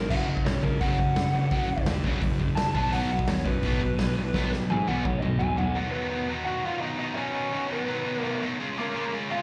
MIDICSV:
0, 0, Header, 1, 5, 480
1, 0, Start_track
1, 0, Tempo, 353565
1, 140, Time_signature, 4, 2, 24, 8
1, 12790, End_track
2, 0, Start_track
2, 0, Title_t, "Lead electric guitar"
2, 0, Program_c, 0, 29
2, 0, Note_on_c, 0, 70, 90
2, 137, Note_on_c, 0, 78, 98
2, 146, Note_off_c, 0, 70, 0
2, 371, Note_off_c, 0, 78, 0
2, 384, Note_on_c, 0, 75, 96
2, 615, Note_off_c, 0, 75, 0
2, 624, Note_on_c, 0, 73, 92
2, 851, Note_on_c, 0, 70, 88
2, 856, Note_off_c, 0, 73, 0
2, 1089, Note_off_c, 0, 70, 0
2, 1094, Note_on_c, 0, 78, 95
2, 2495, Note_off_c, 0, 78, 0
2, 3481, Note_on_c, 0, 81, 112
2, 3719, Note_off_c, 0, 81, 0
2, 3736, Note_on_c, 0, 81, 85
2, 3972, Note_off_c, 0, 81, 0
2, 3981, Note_on_c, 0, 78, 103
2, 4215, Note_off_c, 0, 78, 0
2, 4247, Note_on_c, 0, 78, 98
2, 4455, Note_on_c, 0, 73, 91
2, 4469, Note_off_c, 0, 78, 0
2, 4692, Note_off_c, 0, 73, 0
2, 4698, Note_on_c, 0, 71, 97
2, 6098, Note_off_c, 0, 71, 0
2, 6393, Note_on_c, 0, 80, 97
2, 6622, Note_off_c, 0, 80, 0
2, 6622, Note_on_c, 0, 78, 88
2, 6852, Note_on_c, 0, 73, 106
2, 6856, Note_off_c, 0, 78, 0
2, 7052, Note_off_c, 0, 73, 0
2, 7057, Note_on_c, 0, 75, 87
2, 7313, Note_off_c, 0, 75, 0
2, 7316, Note_on_c, 0, 80, 104
2, 7562, Note_off_c, 0, 80, 0
2, 7578, Note_on_c, 0, 78, 100
2, 7813, Note_off_c, 0, 78, 0
2, 8026, Note_on_c, 0, 71, 110
2, 8038, Note_on_c, 0, 59, 79
2, 8489, Note_off_c, 0, 71, 0
2, 8496, Note_off_c, 0, 59, 0
2, 8759, Note_on_c, 0, 78, 109
2, 8775, Note_on_c, 0, 66, 85
2, 9002, Note_off_c, 0, 66, 0
2, 9025, Note_off_c, 0, 78, 0
2, 9025, Note_on_c, 0, 77, 110
2, 9036, Note_on_c, 0, 65, 81
2, 9228, Note_off_c, 0, 65, 0
2, 9234, Note_on_c, 0, 63, 75
2, 9237, Note_on_c, 0, 75, 104
2, 9271, Note_off_c, 0, 77, 0
2, 9471, Note_off_c, 0, 63, 0
2, 9479, Note_off_c, 0, 75, 0
2, 9495, Note_on_c, 0, 75, 99
2, 9501, Note_on_c, 0, 63, 76
2, 9708, Note_off_c, 0, 63, 0
2, 9713, Note_on_c, 0, 61, 79
2, 9715, Note_off_c, 0, 75, 0
2, 9721, Note_on_c, 0, 73, 103
2, 10395, Note_off_c, 0, 61, 0
2, 10472, Note_off_c, 0, 73, 0
2, 10485, Note_on_c, 0, 71, 87
2, 10496, Note_on_c, 0, 59, 58
2, 11109, Note_off_c, 0, 71, 0
2, 11109, Note_on_c, 0, 70, 87
2, 11378, Note_off_c, 0, 70, 0
2, 11379, Note_off_c, 0, 59, 0
2, 11937, Note_on_c, 0, 58, 88
2, 11952, Note_on_c, 0, 70, 101
2, 12365, Note_off_c, 0, 58, 0
2, 12373, Note_off_c, 0, 70, 0
2, 12643, Note_on_c, 0, 77, 106
2, 12649, Note_on_c, 0, 65, 83
2, 12790, Note_off_c, 0, 65, 0
2, 12790, Note_off_c, 0, 77, 0
2, 12790, End_track
3, 0, Start_track
3, 0, Title_t, "Distorted electric guitar"
3, 0, Program_c, 1, 30
3, 152, Note_on_c, 1, 42, 93
3, 161, Note_on_c, 1, 49, 86
3, 166, Note_on_c, 1, 54, 107
3, 370, Note_off_c, 1, 49, 0
3, 372, Note_off_c, 1, 42, 0
3, 379, Note_off_c, 1, 54, 0
3, 386, Note_on_c, 1, 49, 80
3, 392, Note_on_c, 1, 42, 77
3, 595, Note_off_c, 1, 42, 0
3, 600, Note_off_c, 1, 49, 0
3, 612, Note_on_c, 1, 42, 78
3, 616, Note_on_c, 1, 49, 92
3, 832, Note_off_c, 1, 42, 0
3, 834, Note_off_c, 1, 49, 0
3, 855, Note_on_c, 1, 49, 93
3, 857, Note_on_c, 1, 42, 73
3, 1074, Note_off_c, 1, 49, 0
3, 1075, Note_off_c, 1, 42, 0
3, 1097, Note_on_c, 1, 42, 103
3, 1105, Note_on_c, 1, 49, 98
3, 1121, Note_on_c, 1, 54, 98
3, 1325, Note_off_c, 1, 42, 0
3, 1329, Note_off_c, 1, 49, 0
3, 1337, Note_off_c, 1, 54, 0
3, 1347, Note_on_c, 1, 42, 64
3, 1360, Note_on_c, 1, 49, 77
3, 1560, Note_off_c, 1, 42, 0
3, 1567, Note_off_c, 1, 49, 0
3, 1586, Note_on_c, 1, 42, 72
3, 1589, Note_on_c, 1, 49, 77
3, 1800, Note_off_c, 1, 42, 0
3, 1802, Note_off_c, 1, 49, 0
3, 1823, Note_on_c, 1, 42, 81
3, 1833, Note_on_c, 1, 49, 86
3, 2038, Note_off_c, 1, 42, 0
3, 2044, Note_off_c, 1, 49, 0
3, 2054, Note_on_c, 1, 42, 90
3, 2062, Note_on_c, 1, 49, 94
3, 2076, Note_on_c, 1, 54, 103
3, 2284, Note_off_c, 1, 42, 0
3, 2288, Note_off_c, 1, 49, 0
3, 2295, Note_off_c, 1, 54, 0
3, 2299, Note_on_c, 1, 42, 69
3, 2302, Note_on_c, 1, 49, 86
3, 2517, Note_off_c, 1, 42, 0
3, 2518, Note_off_c, 1, 49, 0
3, 2536, Note_on_c, 1, 42, 95
3, 2547, Note_on_c, 1, 49, 91
3, 2755, Note_off_c, 1, 42, 0
3, 2761, Note_off_c, 1, 49, 0
3, 2775, Note_on_c, 1, 42, 87
3, 2786, Note_on_c, 1, 49, 101
3, 2789, Note_on_c, 1, 54, 117
3, 3005, Note_off_c, 1, 42, 0
3, 3010, Note_off_c, 1, 49, 0
3, 3011, Note_off_c, 1, 54, 0
3, 3026, Note_on_c, 1, 42, 72
3, 3038, Note_on_c, 1, 49, 84
3, 3240, Note_off_c, 1, 42, 0
3, 3246, Note_off_c, 1, 49, 0
3, 3266, Note_on_c, 1, 42, 77
3, 3270, Note_on_c, 1, 49, 78
3, 3480, Note_off_c, 1, 42, 0
3, 3483, Note_off_c, 1, 49, 0
3, 3505, Note_on_c, 1, 42, 68
3, 3516, Note_on_c, 1, 49, 75
3, 3720, Note_off_c, 1, 42, 0
3, 3723, Note_off_c, 1, 49, 0
3, 3728, Note_on_c, 1, 47, 87
3, 3740, Note_on_c, 1, 54, 90
3, 3741, Note_on_c, 1, 59, 94
3, 3961, Note_off_c, 1, 47, 0
3, 3967, Note_off_c, 1, 54, 0
3, 3968, Note_off_c, 1, 59, 0
3, 3991, Note_on_c, 1, 47, 83
3, 3994, Note_on_c, 1, 54, 96
3, 3995, Note_on_c, 1, 59, 101
3, 4213, Note_off_c, 1, 47, 0
3, 4214, Note_off_c, 1, 54, 0
3, 4215, Note_off_c, 1, 59, 0
3, 4230, Note_on_c, 1, 47, 76
3, 4239, Note_on_c, 1, 54, 101
3, 4443, Note_off_c, 1, 47, 0
3, 4444, Note_off_c, 1, 54, 0
3, 4460, Note_on_c, 1, 54, 101
3, 4461, Note_on_c, 1, 47, 86
3, 4678, Note_off_c, 1, 54, 0
3, 4679, Note_off_c, 1, 47, 0
3, 4695, Note_on_c, 1, 47, 75
3, 4705, Note_on_c, 1, 54, 91
3, 4915, Note_off_c, 1, 47, 0
3, 4920, Note_off_c, 1, 54, 0
3, 4947, Note_on_c, 1, 47, 107
3, 4955, Note_on_c, 1, 54, 106
3, 4966, Note_on_c, 1, 59, 110
3, 5171, Note_off_c, 1, 47, 0
3, 5175, Note_off_c, 1, 54, 0
3, 5181, Note_off_c, 1, 59, 0
3, 5192, Note_on_c, 1, 47, 70
3, 5199, Note_on_c, 1, 54, 72
3, 5404, Note_off_c, 1, 47, 0
3, 5407, Note_off_c, 1, 54, 0
3, 5423, Note_on_c, 1, 47, 76
3, 5429, Note_on_c, 1, 54, 86
3, 5640, Note_off_c, 1, 47, 0
3, 5643, Note_off_c, 1, 54, 0
3, 5669, Note_on_c, 1, 54, 88
3, 5674, Note_on_c, 1, 47, 78
3, 5878, Note_off_c, 1, 47, 0
3, 5883, Note_off_c, 1, 54, 0
3, 5895, Note_on_c, 1, 47, 83
3, 5900, Note_on_c, 1, 54, 108
3, 5901, Note_on_c, 1, 59, 101
3, 6120, Note_off_c, 1, 47, 0
3, 6128, Note_off_c, 1, 54, 0
3, 6128, Note_off_c, 1, 59, 0
3, 6136, Note_on_c, 1, 47, 75
3, 6142, Note_on_c, 1, 54, 84
3, 6356, Note_off_c, 1, 47, 0
3, 6359, Note_off_c, 1, 54, 0
3, 6391, Note_on_c, 1, 47, 82
3, 6402, Note_on_c, 1, 54, 91
3, 6600, Note_off_c, 1, 47, 0
3, 6609, Note_off_c, 1, 54, 0
3, 6616, Note_on_c, 1, 47, 96
3, 6630, Note_on_c, 1, 54, 102
3, 6632, Note_on_c, 1, 59, 106
3, 6836, Note_off_c, 1, 47, 0
3, 6836, Note_off_c, 1, 54, 0
3, 6852, Note_on_c, 1, 54, 105
3, 6853, Note_on_c, 1, 47, 89
3, 6854, Note_off_c, 1, 59, 0
3, 7074, Note_off_c, 1, 47, 0
3, 7074, Note_off_c, 1, 54, 0
3, 7100, Note_on_c, 1, 54, 66
3, 7102, Note_on_c, 1, 47, 73
3, 7308, Note_off_c, 1, 47, 0
3, 7315, Note_off_c, 1, 54, 0
3, 7324, Note_on_c, 1, 47, 77
3, 7331, Note_on_c, 1, 54, 75
3, 7550, Note_off_c, 1, 47, 0
3, 7553, Note_off_c, 1, 54, 0
3, 7565, Note_on_c, 1, 47, 82
3, 7567, Note_on_c, 1, 54, 85
3, 7785, Note_off_c, 1, 47, 0
3, 7791, Note_off_c, 1, 54, 0
3, 7801, Note_on_c, 1, 47, 96
3, 7806, Note_on_c, 1, 51, 102
3, 7815, Note_on_c, 1, 59, 111
3, 7817, Note_on_c, 1, 54, 119
3, 7827, Note_on_c, 1, 63, 107
3, 8034, Note_off_c, 1, 51, 0
3, 8037, Note_off_c, 1, 47, 0
3, 8042, Note_on_c, 1, 47, 97
3, 8048, Note_off_c, 1, 54, 0
3, 8050, Note_on_c, 1, 51, 95
3, 8054, Note_on_c, 1, 54, 110
3, 8062, Note_off_c, 1, 59, 0
3, 8063, Note_off_c, 1, 63, 0
3, 8067, Note_on_c, 1, 59, 96
3, 8069, Note_on_c, 1, 63, 96
3, 8267, Note_off_c, 1, 51, 0
3, 8274, Note_off_c, 1, 47, 0
3, 8280, Note_on_c, 1, 47, 109
3, 8283, Note_on_c, 1, 51, 97
3, 8288, Note_off_c, 1, 54, 0
3, 8290, Note_off_c, 1, 59, 0
3, 8293, Note_on_c, 1, 54, 97
3, 8295, Note_on_c, 1, 59, 115
3, 8296, Note_off_c, 1, 63, 0
3, 8301, Note_on_c, 1, 63, 113
3, 8510, Note_off_c, 1, 51, 0
3, 8519, Note_off_c, 1, 47, 0
3, 8524, Note_on_c, 1, 47, 81
3, 8526, Note_off_c, 1, 54, 0
3, 8526, Note_on_c, 1, 51, 90
3, 8531, Note_on_c, 1, 54, 90
3, 8534, Note_off_c, 1, 59, 0
3, 8539, Note_on_c, 1, 59, 98
3, 8540, Note_off_c, 1, 63, 0
3, 8546, Note_on_c, 1, 63, 105
3, 8745, Note_off_c, 1, 47, 0
3, 8749, Note_off_c, 1, 51, 0
3, 8758, Note_off_c, 1, 54, 0
3, 8761, Note_on_c, 1, 47, 89
3, 8765, Note_on_c, 1, 51, 110
3, 8767, Note_off_c, 1, 63, 0
3, 8771, Note_off_c, 1, 59, 0
3, 8774, Note_on_c, 1, 54, 108
3, 8783, Note_on_c, 1, 63, 119
3, 8787, Note_on_c, 1, 59, 102
3, 8992, Note_off_c, 1, 47, 0
3, 9005, Note_off_c, 1, 51, 0
3, 9007, Note_off_c, 1, 54, 0
3, 9008, Note_on_c, 1, 47, 78
3, 9016, Note_off_c, 1, 59, 0
3, 9017, Note_off_c, 1, 63, 0
3, 9021, Note_on_c, 1, 51, 86
3, 9023, Note_on_c, 1, 54, 81
3, 9032, Note_on_c, 1, 59, 86
3, 9033, Note_on_c, 1, 63, 96
3, 9236, Note_off_c, 1, 47, 0
3, 9239, Note_off_c, 1, 51, 0
3, 9244, Note_off_c, 1, 54, 0
3, 9250, Note_off_c, 1, 63, 0
3, 9252, Note_off_c, 1, 59, 0
3, 9252, Note_on_c, 1, 47, 85
3, 9255, Note_on_c, 1, 51, 93
3, 9260, Note_on_c, 1, 54, 88
3, 9266, Note_on_c, 1, 63, 94
3, 9268, Note_on_c, 1, 59, 104
3, 9453, Note_off_c, 1, 47, 0
3, 9459, Note_off_c, 1, 51, 0
3, 9469, Note_on_c, 1, 47, 94
3, 9470, Note_off_c, 1, 54, 0
3, 9475, Note_on_c, 1, 51, 96
3, 9476, Note_off_c, 1, 59, 0
3, 9482, Note_off_c, 1, 63, 0
3, 9487, Note_on_c, 1, 54, 108
3, 9492, Note_on_c, 1, 59, 105
3, 9498, Note_on_c, 1, 63, 112
3, 9707, Note_off_c, 1, 47, 0
3, 9708, Note_off_c, 1, 51, 0
3, 9710, Note_off_c, 1, 54, 0
3, 9723, Note_on_c, 1, 47, 89
3, 9724, Note_off_c, 1, 63, 0
3, 9724, Note_on_c, 1, 51, 85
3, 9726, Note_on_c, 1, 54, 106
3, 9727, Note_off_c, 1, 59, 0
3, 9740, Note_on_c, 1, 63, 96
3, 9743, Note_on_c, 1, 59, 115
3, 9935, Note_off_c, 1, 47, 0
3, 9943, Note_off_c, 1, 51, 0
3, 9948, Note_off_c, 1, 54, 0
3, 9948, Note_off_c, 1, 59, 0
3, 9951, Note_on_c, 1, 47, 95
3, 9960, Note_on_c, 1, 51, 98
3, 9965, Note_on_c, 1, 54, 106
3, 9965, Note_on_c, 1, 59, 100
3, 9967, Note_off_c, 1, 63, 0
3, 9983, Note_on_c, 1, 63, 96
3, 10200, Note_off_c, 1, 47, 0
3, 10200, Note_off_c, 1, 51, 0
3, 10214, Note_off_c, 1, 59, 0
3, 10215, Note_off_c, 1, 54, 0
3, 10216, Note_on_c, 1, 47, 95
3, 10216, Note_on_c, 1, 51, 104
3, 10219, Note_off_c, 1, 63, 0
3, 10230, Note_on_c, 1, 59, 125
3, 10231, Note_on_c, 1, 54, 107
3, 10235, Note_on_c, 1, 63, 122
3, 10425, Note_off_c, 1, 47, 0
3, 10429, Note_off_c, 1, 51, 0
3, 10429, Note_off_c, 1, 54, 0
3, 10441, Note_off_c, 1, 59, 0
3, 10441, Note_on_c, 1, 47, 88
3, 10445, Note_on_c, 1, 51, 94
3, 10445, Note_on_c, 1, 54, 103
3, 10447, Note_off_c, 1, 63, 0
3, 10457, Note_on_c, 1, 59, 98
3, 10463, Note_on_c, 1, 63, 103
3, 10665, Note_off_c, 1, 47, 0
3, 10672, Note_off_c, 1, 51, 0
3, 10677, Note_off_c, 1, 54, 0
3, 10681, Note_on_c, 1, 47, 94
3, 10684, Note_off_c, 1, 59, 0
3, 10689, Note_on_c, 1, 51, 114
3, 10693, Note_on_c, 1, 54, 123
3, 10694, Note_off_c, 1, 63, 0
3, 10700, Note_on_c, 1, 59, 120
3, 10710, Note_on_c, 1, 63, 101
3, 10913, Note_off_c, 1, 47, 0
3, 10915, Note_off_c, 1, 51, 0
3, 10917, Note_off_c, 1, 54, 0
3, 10929, Note_off_c, 1, 59, 0
3, 10929, Note_on_c, 1, 47, 76
3, 10931, Note_on_c, 1, 51, 78
3, 10932, Note_off_c, 1, 63, 0
3, 10933, Note_on_c, 1, 54, 95
3, 10946, Note_on_c, 1, 59, 90
3, 10948, Note_on_c, 1, 63, 93
3, 11150, Note_off_c, 1, 47, 0
3, 11156, Note_off_c, 1, 51, 0
3, 11167, Note_off_c, 1, 54, 0
3, 11167, Note_on_c, 1, 47, 92
3, 11172, Note_on_c, 1, 51, 81
3, 11173, Note_off_c, 1, 59, 0
3, 11177, Note_off_c, 1, 63, 0
3, 11183, Note_on_c, 1, 54, 94
3, 11189, Note_on_c, 1, 59, 87
3, 11193, Note_on_c, 1, 63, 100
3, 11403, Note_off_c, 1, 47, 0
3, 11415, Note_off_c, 1, 51, 0
3, 11420, Note_off_c, 1, 54, 0
3, 11420, Note_on_c, 1, 47, 89
3, 11429, Note_off_c, 1, 63, 0
3, 11430, Note_off_c, 1, 59, 0
3, 11431, Note_on_c, 1, 51, 92
3, 11436, Note_on_c, 1, 54, 96
3, 11445, Note_on_c, 1, 63, 112
3, 11447, Note_on_c, 1, 59, 93
3, 11645, Note_off_c, 1, 47, 0
3, 11651, Note_off_c, 1, 51, 0
3, 11653, Note_off_c, 1, 54, 0
3, 11658, Note_off_c, 1, 63, 0
3, 11659, Note_off_c, 1, 59, 0
3, 11664, Note_on_c, 1, 49, 99
3, 11674, Note_on_c, 1, 61, 113
3, 11676, Note_on_c, 1, 56, 104
3, 11687, Note_on_c, 1, 65, 114
3, 11899, Note_off_c, 1, 49, 0
3, 11904, Note_off_c, 1, 56, 0
3, 11904, Note_on_c, 1, 49, 101
3, 11907, Note_off_c, 1, 65, 0
3, 11909, Note_on_c, 1, 56, 97
3, 11913, Note_on_c, 1, 65, 105
3, 11914, Note_off_c, 1, 61, 0
3, 11920, Note_on_c, 1, 61, 102
3, 12138, Note_off_c, 1, 49, 0
3, 12144, Note_on_c, 1, 49, 101
3, 12150, Note_off_c, 1, 56, 0
3, 12152, Note_off_c, 1, 61, 0
3, 12155, Note_on_c, 1, 56, 117
3, 12157, Note_on_c, 1, 61, 112
3, 12168, Note_off_c, 1, 65, 0
3, 12174, Note_on_c, 1, 65, 125
3, 12366, Note_off_c, 1, 49, 0
3, 12380, Note_off_c, 1, 56, 0
3, 12382, Note_on_c, 1, 49, 102
3, 12383, Note_off_c, 1, 61, 0
3, 12385, Note_on_c, 1, 56, 88
3, 12390, Note_off_c, 1, 65, 0
3, 12400, Note_on_c, 1, 61, 96
3, 12406, Note_on_c, 1, 65, 90
3, 12611, Note_off_c, 1, 49, 0
3, 12620, Note_off_c, 1, 61, 0
3, 12627, Note_on_c, 1, 49, 111
3, 12629, Note_off_c, 1, 56, 0
3, 12630, Note_off_c, 1, 65, 0
3, 12634, Note_on_c, 1, 56, 111
3, 12636, Note_on_c, 1, 61, 123
3, 12646, Note_on_c, 1, 65, 125
3, 12790, Note_off_c, 1, 49, 0
3, 12790, Note_off_c, 1, 56, 0
3, 12790, Note_off_c, 1, 61, 0
3, 12790, Note_off_c, 1, 65, 0
3, 12790, End_track
4, 0, Start_track
4, 0, Title_t, "Picked electric bass"
4, 0, Program_c, 2, 34
4, 151, Note_on_c, 2, 30, 89
4, 545, Note_off_c, 2, 30, 0
4, 640, Note_on_c, 2, 35, 92
4, 831, Note_off_c, 2, 35, 0
4, 866, Note_on_c, 2, 37, 91
4, 1063, Note_off_c, 2, 37, 0
4, 1097, Note_on_c, 2, 30, 90
4, 1298, Note_off_c, 2, 30, 0
4, 1345, Note_on_c, 2, 42, 87
4, 1543, Note_off_c, 2, 42, 0
4, 1582, Note_on_c, 2, 30, 87
4, 1781, Note_off_c, 2, 30, 0
4, 1813, Note_on_c, 2, 30, 87
4, 2016, Note_off_c, 2, 30, 0
4, 2058, Note_on_c, 2, 30, 94
4, 2458, Note_off_c, 2, 30, 0
4, 2538, Note_on_c, 2, 39, 86
4, 2739, Note_off_c, 2, 39, 0
4, 2769, Note_on_c, 2, 30, 93
4, 2974, Note_off_c, 2, 30, 0
4, 3012, Note_on_c, 2, 30, 100
4, 3216, Note_off_c, 2, 30, 0
4, 3253, Note_on_c, 2, 30, 90
4, 3456, Note_off_c, 2, 30, 0
4, 3501, Note_on_c, 2, 30, 88
4, 3701, Note_off_c, 2, 30, 0
4, 3738, Note_on_c, 2, 35, 81
4, 3940, Note_off_c, 2, 35, 0
4, 3983, Note_on_c, 2, 35, 86
4, 4382, Note_off_c, 2, 35, 0
4, 4462, Note_on_c, 2, 39, 90
4, 4662, Note_off_c, 2, 39, 0
4, 4694, Note_on_c, 2, 42, 98
4, 4897, Note_off_c, 2, 42, 0
4, 4935, Note_on_c, 2, 35, 93
4, 5138, Note_off_c, 2, 35, 0
4, 5178, Note_on_c, 2, 47, 91
4, 5380, Note_off_c, 2, 47, 0
4, 5425, Note_on_c, 2, 35, 88
4, 5624, Note_off_c, 2, 35, 0
4, 5669, Note_on_c, 2, 35, 86
4, 5866, Note_off_c, 2, 35, 0
4, 5901, Note_on_c, 2, 35, 100
4, 6301, Note_off_c, 2, 35, 0
4, 6404, Note_on_c, 2, 44, 101
4, 6595, Note_off_c, 2, 44, 0
4, 6632, Note_on_c, 2, 35, 92
4, 6828, Note_off_c, 2, 35, 0
4, 6868, Note_on_c, 2, 35, 92
4, 7066, Note_off_c, 2, 35, 0
4, 7125, Note_on_c, 2, 35, 93
4, 7315, Note_off_c, 2, 35, 0
4, 7368, Note_on_c, 2, 35, 86
4, 7557, Note_off_c, 2, 35, 0
4, 7605, Note_on_c, 2, 35, 96
4, 7795, Note_off_c, 2, 35, 0
4, 12790, End_track
5, 0, Start_track
5, 0, Title_t, "Drums"
5, 144, Note_on_c, 9, 36, 113
5, 150, Note_on_c, 9, 49, 101
5, 150, Note_on_c, 9, 55, 83
5, 279, Note_off_c, 9, 36, 0
5, 285, Note_off_c, 9, 49, 0
5, 285, Note_off_c, 9, 55, 0
5, 502, Note_on_c, 9, 36, 94
5, 628, Note_on_c, 9, 46, 58
5, 631, Note_on_c, 9, 38, 114
5, 638, Note_off_c, 9, 36, 0
5, 764, Note_off_c, 9, 46, 0
5, 767, Note_off_c, 9, 38, 0
5, 863, Note_on_c, 9, 36, 92
5, 999, Note_off_c, 9, 36, 0
5, 1100, Note_on_c, 9, 36, 111
5, 1107, Note_on_c, 9, 46, 57
5, 1236, Note_off_c, 9, 36, 0
5, 1243, Note_off_c, 9, 46, 0
5, 1336, Note_on_c, 9, 36, 78
5, 1472, Note_off_c, 9, 36, 0
5, 1576, Note_on_c, 9, 46, 62
5, 1579, Note_on_c, 9, 38, 114
5, 1712, Note_off_c, 9, 46, 0
5, 1714, Note_off_c, 9, 38, 0
5, 2052, Note_on_c, 9, 46, 72
5, 2053, Note_on_c, 9, 36, 118
5, 2188, Note_off_c, 9, 46, 0
5, 2189, Note_off_c, 9, 36, 0
5, 2412, Note_on_c, 9, 36, 95
5, 2528, Note_on_c, 9, 46, 61
5, 2531, Note_on_c, 9, 38, 124
5, 2548, Note_off_c, 9, 36, 0
5, 2664, Note_off_c, 9, 46, 0
5, 2666, Note_off_c, 9, 38, 0
5, 2771, Note_on_c, 9, 36, 96
5, 2906, Note_off_c, 9, 36, 0
5, 3007, Note_on_c, 9, 46, 68
5, 3010, Note_on_c, 9, 36, 112
5, 3143, Note_off_c, 9, 46, 0
5, 3146, Note_off_c, 9, 36, 0
5, 3252, Note_on_c, 9, 36, 84
5, 3387, Note_off_c, 9, 36, 0
5, 3491, Note_on_c, 9, 46, 68
5, 3494, Note_on_c, 9, 38, 114
5, 3627, Note_off_c, 9, 46, 0
5, 3630, Note_off_c, 9, 38, 0
5, 3733, Note_on_c, 9, 36, 104
5, 3868, Note_off_c, 9, 36, 0
5, 3971, Note_on_c, 9, 46, 66
5, 4107, Note_off_c, 9, 46, 0
5, 4332, Note_on_c, 9, 36, 102
5, 4446, Note_on_c, 9, 46, 63
5, 4448, Note_on_c, 9, 38, 127
5, 4468, Note_off_c, 9, 36, 0
5, 4581, Note_off_c, 9, 46, 0
5, 4584, Note_off_c, 9, 38, 0
5, 4691, Note_on_c, 9, 36, 86
5, 4827, Note_off_c, 9, 36, 0
5, 4923, Note_on_c, 9, 46, 64
5, 4932, Note_on_c, 9, 36, 109
5, 5059, Note_off_c, 9, 46, 0
5, 5068, Note_off_c, 9, 36, 0
5, 5173, Note_on_c, 9, 36, 92
5, 5309, Note_off_c, 9, 36, 0
5, 5412, Note_on_c, 9, 46, 65
5, 5415, Note_on_c, 9, 38, 108
5, 5548, Note_off_c, 9, 46, 0
5, 5551, Note_off_c, 9, 38, 0
5, 5896, Note_on_c, 9, 36, 110
5, 5897, Note_on_c, 9, 38, 72
5, 6032, Note_off_c, 9, 36, 0
5, 6033, Note_off_c, 9, 38, 0
5, 6139, Note_on_c, 9, 38, 55
5, 6275, Note_off_c, 9, 38, 0
5, 6378, Note_on_c, 9, 48, 78
5, 6514, Note_off_c, 9, 48, 0
5, 6619, Note_on_c, 9, 48, 75
5, 6755, Note_off_c, 9, 48, 0
5, 6858, Note_on_c, 9, 47, 91
5, 6859, Note_on_c, 9, 36, 113
5, 6994, Note_off_c, 9, 47, 0
5, 6995, Note_off_c, 9, 36, 0
5, 7092, Note_on_c, 9, 45, 84
5, 7228, Note_off_c, 9, 45, 0
5, 7343, Note_on_c, 9, 43, 108
5, 7478, Note_off_c, 9, 43, 0
5, 7579, Note_on_c, 9, 43, 90
5, 7715, Note_off_c, 9, 43, 0
5, 12790, End_track
0, 0, End_of_file